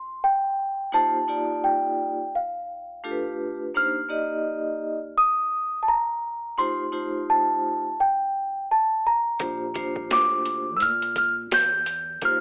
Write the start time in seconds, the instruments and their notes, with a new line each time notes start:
Already playing: celesta C6
0.24 celesta G5
0.92 vibraphone A#3 D#4 F4 G4 C5, celesta A5
1.28 vibraphone A#3 D#4 F4 G4 D5
1.64 celesta G5
2.35 celesta F5
3.04 vibraphone A3 D4 F4 G4 A4
3.11 vibraphone B4
3.75 vibraphone A#3 D4 D#4 G4 C5, celesta F6
4.09 vibraphone A#3 D#4 G4 D5 D#5
5.18 celesta D#6
5.83 celesta A5
5.88 celesta A#5
6.58 vibraphone A3 D#4 F4 G4 C5, celesta C6
6.92 vibraphone A3 D#4 F4 G4 C5
7.30 celesta A5
8.00 celesta G5
8.71 celesta A5
9.07 celesta A#5
9.39 upright bass A#1, vibraphone A#3 D4 F4 G4 C5, kick, closed hi-hat
9.74 vibraphone A#3 D4 F4 G4 C5, kick, closed hi-hat
9.96 kick
10.11 upright bass D2, celesta D6, snare, closed hi-hat
10.45 closed hi-hat
10.77 celesta E6, closed hi-hat
10.81 upright bass A#2, celesta F6
11.02 closed hi-hat
11.16 celesta F6, kick, closed hi-hat
11.51 upright bass E2, celesta G6, snare, closed hi-hat
11.86 closed hi-hat
12.21 upright bass D#2, vibraphone A#3 D#4 F4 G4 C5, celesta F6, kick, closed hi-hat